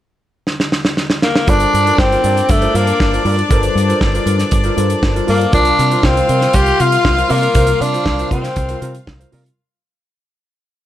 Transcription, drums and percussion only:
0.47 snare
0.60 snare
0.72 snare
0.85 snare
0.97 snare
1.10 snare
1.22 snare
1.36 snare
1.48 kick, closed hi-hat
1.60 closed hi-hat
1.74 closed hi-hat
1.87 closed hi-hat
1.98 kick, snare
2.12 closed hi-hat
2.24 closed hi-hat
2.37 closed hi-hat
2.49 kick, closed hi-hat
2.62 closed hi-hat
2.75 closed hi-hat
2.87 closed hi-hat
3.00 kick, snare
3.14 closed hi-hat
3.25 open hi-hat
3.39 closed hi-hat
3.50 kick, closed hi-hat
3.63 closed hi-hat
3.77 closed hi-hat
3.90 closed hi-hat
4.01 kick, snare
4.15 closed hi-hat
4.27 closed hi-hat
4.39 snare, closed hi-hat
4.51 kick, closed hi-hat
4.64 closed hi-hat
4.78 closed hi-hat
4.90 closed hi-hat
5.03 kick, snare
5.16 closed hi-hat
5.28 open hi-hat
5.41 closed hi-hat
5.53 kick, closed hi-hat
5.65 closed hi-hat
5.79 closed hi-hat
5.91 closed hi-hat
6.03 kick, snare
6.17 closed hi-hat
6.29 closed hi-hat
6.41 snare, closed hi-hat
6.53 kick, closed hi-hat
6.66 closed hi-hat
6.80 closed hi-hat
6.92 closed hi-hat
7.05 kick, snare
7.18 closed hi-hat
7.30 open hi-hat
7.43 closed hi-hat
7.55 kick, closed hi-hat
7.67 closed hi-hat
7.82 closed hi-hat
7.94 closed hi-hat
8.06 kick, snare
8.19 closed hi-hat
8.31 kick, closed hi-hat
8.44 snare, closed hi-hat
8.56 kick, closed hi-hat
8.69 closed hi-hat
8.82 closed hi-hat
8.94 closed hi-hat
9.07 kick, snare
9.21 closed hi-hat
9.32 open hi-hat
9.46 closed hi-hat

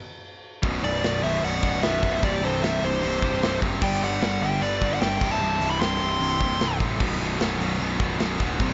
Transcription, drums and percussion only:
0.63 kick, open hi-hat
0.83 open hi-hat
1.04 snare, open hi-hat
1.24 open hi-hat
1.43 open hi-hat
1.63 kick, open hi-hat
1.74 snare
1.83 snare, open hi-hat
2.03 kick, open hi-hat
2.23 kick, open hi-hat
2.43 open hi-hat
2.63 snare, open hi-hat
2.83 open hi-hat
3.03 open hi-hat
3.22 kick, open hi-hat
3.43 snare, open hi-hat
3.62 kick, open hi-hat
3.82 kick, crash
4.02 open hi-hat
4.22 snare, open hi-hat
4.42 open hi-hat
4.62 open hi-hat
4.82 kick, open hi-hat
5.01 snare, open hi-hat
5.21 kick, crash
5.61 open hi-hat
5.81 snare, open hi-hat
6.01 open hi-hat
6.21 open hi-hat
6.40 kick, open hi-hat
6.60 snare, open hi-hat
6.80 kick, open hi-hat
7.00 kick, crash
7.21 open hi-hat
7.40 snare, open hi-hat
7.60 open hi-hat
7.80 open hi-hat
8.00 kick, open hi-hat
8.20 snare, open hi-hat
8.40 kick, open hi-hat
8.60 kick, open hi-hat

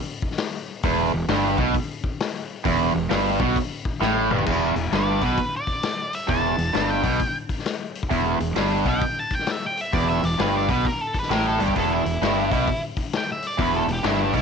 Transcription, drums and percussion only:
0.22 kick
0.31 snare
0.38 snare, open hi-hat
0.83 kick, open hi-hat
1.28 snare, open hi-hat
1.58 kick, snare
1.74 kick, open hi-hat
2.04 kick
2.20 snare, open hi-hat
2.65 kick, open hi-hat
3.11 snare, open hi-hat
3.40 kick
3.56 kick, open hi-hat
3.85 kick
4.02 snare
4.31 mid tom
4.39 floor tom
4.46 kick, crash
4.76 open hi-hat
4.93 snare, open hi-hat
5.22 kick, open hi-hat
5.38 kick, open hi-hat
5.67 kick, open hi-hat
5.83 snare, open hi-hat
6.13 open hi-hat
6.29 kick, open hi-hat
6.58 open hi-hat
6.75 snare, open hi-hat
7.04 kick, open hi-hat
7.20 kick, open hi-hat
7.49 kick, open hi-hat
7.59 snare
7.66 snare, open hi-hat
7.95 open hi-hat
8.03 kick
8.11 kick, open hi-hat
8.40 open hi-hat
8.56 snare, open hi-hat
8.86 kick, open hi-hat
9.01 kick, open hi-hat
9.30 kick, open hi-hat
9.39 snare
9.47 snare, open hi-hat
9.77 open hi-hat
9.93 kick, open hi-hat
10.23 open hi-hat
10.39 snare, open hi-hat
10.69 kick, open hi-hat
10.85 kick, open hi-hat
11.14 kick, open hi-hat
11.22 snare
11.31 snare, open hi-hat
11.60 open hi-hat
11.68 kick
11.76 kick, open hi-hat
12.06 open hi-hat
12.23 snare, open hi-hat
12.52 kick, open hi-hat
12.68 kick, open hi-hat
12.97 kick, open hi-hat
13.13 snare, open hi-hat
13.42 open hi-hat
13.59 kick, open hi-hat
13.89 open hi-hat
14.04 snare, open hi-hat
14.34 kick, open hi-hat

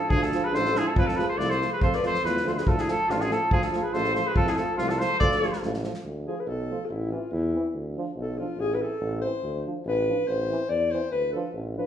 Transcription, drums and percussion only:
0.10 kick
0.22 snare
0.32 snare
0.54 snare
0.65 snare
0.75 snare
0.96 kick
1.08 snare
1.19 snare
1.40 snare
1.50 snare
1.61 snare
1.81 kick
1.93 snare
2.03 snare
2.14 snare
2.25 snare
2.37 snare
2.47 snare
2.57 snare
2.67 kick
2.78 snare
2.88 snare
3.09 snare
3.20 snare
3.31 snare
3.51 kick
3.62 snare
3.73 snare
3.94 snare
4.04 snare
4.15 snare
4.36 kick
4.47 snare
4.57 snare
4.78 snare
4.89 snare
5.00 snare
5.21 kick
5.31 snare
5.42 snare
5.53 snare
5.63 snare
5.74 snare
5.83 snare
5.94 snare

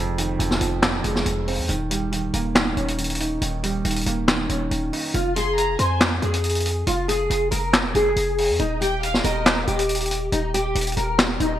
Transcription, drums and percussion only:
0.18 closed hi-hat
0.40 closed hi-hat
0.51 snare
0.61 closed hi-hat
0.82 snare, clap
1.04 closed hi-hat
1.16 snare
1.26 closed hi-hat
1.48 open hi-hat
1.69 closed hi-hat
1.91 closed hi-hat
2.12 closed hi-hat
2.34 closed hi-hat
2.55 snare, clap
2.77 closed hi-hat
2.88 closed hi-hat
2.98 closed hi-hat
3.04 closed hi-hat
3.10 closed hi-hat
3.15 closed hi-hat
3.20 closed hi-hat
3.42 closed hi-hat
3.64 closed hi-hat
3.85 closed hi-hat
3.90 closed hi-hat
3.96 closed hi-hat
4.01 closed hi-hat
4.06 closed hi-hat
4.28 snare, clap
4.49 closed hi-hat
4.71 closed hi-hat
4.93 open hi-hat
5.14 closed hi-hat
5.36 closed hi-hat
5.58 closed hi-hat
5.79 closed hi-hat
6.01 snare, clap
6.22 closed hi-hat
6.34 closed hi-hat
6.44 closed hi-hat
6.49 closed hi-hat
6.55 closed hi-hat
6.60 closed hi-hat
6.66 closed hi-hat
6.87 closed hi-hat
7.09 closed hi-hat
7.30 closed hi-hat
7.52 closed hi-hat
7.73 snare, clap
7.95 closed hi-hat
8.16 closed hi-hat
8.38 open hi-hat
8.59 closed hi-hat
8.82 closed hi-hat
9.03 closed hi-hat
9.14 snare
9.24 closed hi-hat
9.46 snare, clap
9.67 closed hi-hat
9.79 closed hi-hat
9.89 closed hi-hat
9.95 closed hi-hat
10.00 closed hi-hat
10.06 closed hi-hat
10.11 closed hi-hat
10.32 closed hi-hat
10.54 closed hi-hat
10.75 closed hi-hat
10.81 closed hi-hat
10.87 closed hi-hat
10.92 closed hi-hat
10.97 closed hi-hat
11.19 snare, clap
11.40 closed hi-hat

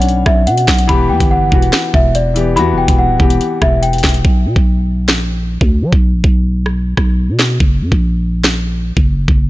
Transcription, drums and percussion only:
0.02 closed hi-hat
0.09 closed hi-hat
0.26 kick, cross-stick
0.47 closed hi-hat
0.58 closed hi-hat
0.68 kick, snare, closed hi-hat
0.79 closed hi-hat
0.89 kick, closed hi-hat
1.20 kick, closed hi-hat
1.52 kick
1.62 closed hi-hat
1.73 snare, closed hi-hat
1.94 kick
2.15 closed hi-hat
2.36 closed hi-hat
2.57 closed hi-hat
2.88 kick, closed hi-hat
3.20 kick
3.30 closed hi-hat
3.41 closed hi-hat
3.62 kick, cross-stick
3.83 closed hi-hat
3.93 closed hi-hat
3.98 closed hi-hat
4.04 kick, snare, closed hi-hat, open hi-hat
4.09 closed hi-hat
4.14 closed hi-hat
4.25 kick
4.56 kick
5.09 snare
5.61 kick
5.93 kick
6.24 kick
6.66 cross-stick
6.97 kick, cross-stick
7.39 snare
7.60 kick
7.92 kick
8.44 snare
8.97 kick
9.28 kick

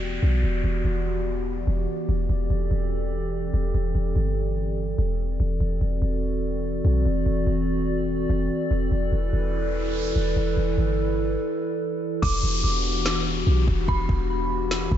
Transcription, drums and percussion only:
12.23 kick, crash
13.06 snare
13.68 kick
13.88 kick
14.09 kick
14.71 snare
14.92 kick

